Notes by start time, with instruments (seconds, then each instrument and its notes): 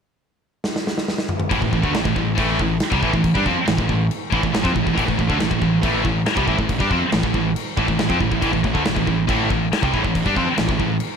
0.64 snare
0.76 snare
0.87 snare
0.98 snare
1.08 snare
1.18 snare
1.29 mid tom
1.40 mid tom
1.50 picked electric bass A1, distorted electric guitar A2 E3, kick, crash
1.59 picked electric bass A1, distorted electric guitar A2 E3, kick
1.71 picked electric bass A1, distorted electric guitar A2 E3, kick
1.82 picked electric bass D2, distorted electric guitar D3 A3, kick
1.93 picked electric bass A1, distorted electric guitar A2 E3, snare, crash
2.04 picked electric bass A1, distorted electric guitar A2 E3, kick
2.08 overdriven electric guitar A2 E3
2.14 picked electric bass A1, distorted electric guitar A2 E3, kick
2.35 picked electric bass A1, distorted electric guitar A2 E3 A3, kick, crash
2.58 picked electric bass A1, distorted electric guitar A2 E3, kick
2.80 snare, crash
2.90 picked electric bass C2, distorted electric guitar C3 G3, kick
3.02 picked electric bass A1, distorted electric guitar A2 E3, kick
3.13 picked electric bass A1, distorted electric guitar A2 E3, kick
3.24 kick, crash
3.34 picked electric bass G2, distorted electric guitar G3 D4, kick
3.44 picked electric bass F2, distorted electric guitar F3 C4, kick
3.66 picked electric bass A1, distorted electric guitar A2 E3, snare, crash
3.77 picked electric bass A1, distorted electric guitar A2 E3, kick
3.88 picked electric bass A1, distorted electric guitar A2 E3, kick
4.11 crash
4.30 picked electric bass A1, distorted electric guitar A2 E3, kick
4.41 picked electric bass A1, distorted electric guitar A2 E3, kick
4.52 picked electric bass A1, distorted electric guitar A2 E3, snare, crash
4.63 picked electric bass F2, distorted electric guitar F3 C4, kick
4.73 picked electric bass A1, distorted electric guitar A2 E3, kick
4.83 picked electric bass A1, distorted electric guitar A2 E3, kick
4.93 distorted electric guitar A2 E3
4.98 picked electric bass A1, kick, crash
5.05 picked electric bass A1, distorted electric guitar A2 E3, kick
5.17 picked electric bass A1, distorted electric guitar A2 E3, kick
5.29 picked electric bass D2, distorted electric guitar D3 A3, kick
5.40 picked electric bass A1, distorted electric guitar A2 E3, snare, crash
5.51 picked electric bass A1, distorted electric guitar A2 E3, kick
5.61 picked electric bass A1, distorted electric guitar A2 E3, kick
5.83 picked electric bass A1, distorted electric guitar A2 E3 A3, kick, crash
6.04 picked electric bass A1, distorted electric guitar A2 E3, kick
6.26 snare, crash
6.36 picked electric bass C2, distorted electric guitar C3 G3, kick
6.46 picked electric bass A1, distorted electric guitar A2 E3, kick
6.57 picked electric bass A1, distorted electric guitar A2 E3, kick
6.69 kick, crash
6.79 picked electric bass G2, distorted electric guitar G3 D4, kick
6.90 picked electric bass F2, distorted electric guitar F3 C4, kick
7.12 picked electric bass A1, distorted electric guitar A2 E3, snare, crash
7.23 picked electric bass A1, distorted electric guitar A2 E3, kick
7.34 picked electric bass A1, distorted electric guitar A2 E3, kick
7.56 crash
7.77 picked electric bass A1, distorted electric guitar A2 E3, kick
7.88 picked electric bass A1, distorted electric guitar A2 E3, kick
7.99 picked electric bass A1, distorted electric guitar A2 E3, snare, crash
8.10 picked electric bass F2, distorted electric guitar F3 C4, kick
8.21 picked electric bass A1, distorted electric guitar A2 E3, kick
8.31 picked electric bass A1, distorted electric guitar A2 E3, kick
8.41 picked electric bass A1, distorted electric guitar A2 E3, kick, crash
8.52 picked electric bass A1, distorted electric guitar A2 E3, kick
8.63 picked electric bass A1, distorted electric guitar A2 E3, kick
8.73 picked electric bass D2, distorted electric guitar D3 A3, kick
8.85 picked electric bass A1, distorted electric guitar A2 E3, snare, crash
8.95 picked electric bass A1, distorted electric guitar A2 E3, kick
9.06 picked electric bass A1, distorted electric guitar A2 E3, kick
9.27 picked electric bass A1, distorted electric guitar A2 E3 A3, kick, crash
9.50 picked electric bass A1, distorted electric guitar A2 E3, kick
9.73 snare, crash
9.82 picked electric bass C2, distorted electric guitar C3 G3, kick
9.93 picked electric bass A1, distorted electric guitar A2 E3, kick
10.04 picked electric bass A1, distorted electric guitar A2 E3, kick
10.15 kick, crash
10.26 picked electric bass G2, distorted electric guitar G3 D4, kick
10.36 picked electric bass F2, distorted electric guitar F3 C4, kick
10.58 picked electric bass A1, distorted electric guitar A2 E3, snare, crash
10.68 picked electric bass A1, distorted electric guitar A2 E3, kick
10.79 picked electric bass A1, distorted electric guitar A2 E3, kick
11.00 crash